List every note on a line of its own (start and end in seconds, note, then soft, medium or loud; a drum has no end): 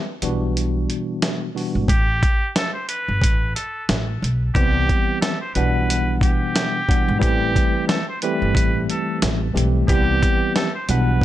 0.22 0.85 B1 medium
0.22 1.47 B2 medium
0.22 1.47 E3 medium
0.22 1.47 G3 medium
0.22 1.47 B3 medium
0.22 1.47 D4 medium
0.22 1.47 F#4 loud
0.22 closed hi-hat medium
0.57 closed hi-hat loud
0.90 closed hi-hat medium
1.22 snare loud
1.22 closed hi-hat loud
1.55 1.86 B2 medium
1.55 1.86 E3 medium
1.55 1.86 G3 medium
1.55 1.86 B3 medium
1.55 1.87 D4 medium
1.55 1.87 F#4 medium
1.55 open hi-hat soft
1.75 1.87 G#1 medium
1.88 2.19 A1 loud
1.88 2.52 G4 loud
1.88 kick loud
1.88 closed hi-hat medium
2.23 kick loud
2.23 closed hi-hat medium
2.56 2.73 A4 medium
2.56 snare loud
2.56 closed hi-hat medium
2.74 2.87 C5 medium
2.88 3.51 B4 medium
2.88 closed hi-hat medium
3.08 3.21 G1 medium
3.22 3.52 A1 loud
3.22 kick medium
3.22 closed hi-hat loud
3.55 3.85 A4 medium
3.55 closed hi-hat medium
3.89 4.19 A1 medium
3.89 snare loud
3.89 closed hi-hat loud
4.22 4.52 B1 medium
4.22 closed hi-hat medium
4.55 4.85 C2 loud
4.55 5.34 E3 medium
4.55 5.34 G3 medium
4.55 5.34 B3 medium
4.55 5.34 C4 medium
4.55 5.18 G4 loud
4.55 5.34 G4 loud
4.55 kick loud
4.55 closed hi-hat medium
4.89 kick loud
4.89 closed hi-hat medium
5.21 5.39 A4 loud
5.21 snare loud
5.21 closed hi-hat medium
5.41 5.54 C5 medium
5.54 6.18 B1 loud
5.54 6.80 B2 loud
5.54 6.80 E3 medium
5.54 6.80 G3 medium
5.54 6.80 B3 medium
5.54 6.81 D4 medium
5.54 6.18 B4 medium
5.54 6.81 F#5 loud
5.54 closed hi-hat medium
5.90 closed hi-hat loud
6.21 7.18 G4 medium
6.21 kick medium
6.21 closed hi-hat medium
6.56 snare loud
6.56 closed hi-hat loud
6.88 7.19 B2 medium
6.88 7.18 E3 medium
6.88 7.18 G3 medium
6.88 7.20 B3 medium
6.88 7.20 D4 medium
6.88 7.20 F#5 medium
6.88 kick medium
6.88 closed hi-hat medium
7.08 7.21 G#1 loud
7.19 7.52 A1 loud
7.19 7.99 E3 loud
7.19 7.99 G3 medium
7.19 7.99 A3 medium
7.19 7.99 C4 medium
7.19 7.84 G4 loud
7.19 8.00 G4 loud
7.19 kick loud
7.19 closed hi-hat medium
7.56 kick loud
7.56 closed hi-hat medium
7.88 8.06 A4 medium
7.88 snare loud
7.88 closed hi-hat medium
8.09 8.21 C5 medium
8.22 9.47 E3 loud
8.22 9.47 G3 loud
8.22 9.47 A3 medium
8.22 9.47 C4 medium
8.22 9.48 G4 medium
8.22 8.85 B4 medium
8.22 closed hi-hat medium
8.42 8.54 G1 medium
8.55 8.85 A1 medium
8.55 kick medium
8.55 closed hi-hat loud
8.90 9.19 A4 medium
8.90 closed hi-hat medium
9.22 9.52 A1 medium
9.22 snare loud
9.22 closed hi-hat loud
9.53 9.86 B1 medium
9.53 9.85 E3 medium
9.53 9.86 G3 medium
9.53 9.86 A3 medium
9.53 9.86 C4 medium
9.53 9.86 G4 medium
9.57 closed hi-hat medium
9.88 10.19 C2 loud
9.88 10.67 E3 medium
9.88 10.67 G3 loud
9.88 10.67 B3 medium
9.88 10.67 C4 medium
9.88 10.51 G4 loud
9.88 10.68 G4 loud
9.88 kick loud
9.88 closed hi-hat medium
10.23 kick loud
10.23 closed hi-hat medium
10.55 10.73 A4 medium
10.55 snare loud
10.55 closed hi-hat medium
10.75 10.87 C5 medium
10.89 11.25 B1 loud
10.89 11.25 B2 loud
10.89 11.25 E3 medium
10.89 11.25 G3 medium
10.89 11.25 B3 medium
10.89 11.25 D4 medium
10.89 11.25 B4 medium
10.89 11.25 F#5 loud
10.89 closed hi-hat medium
11.21 kick medium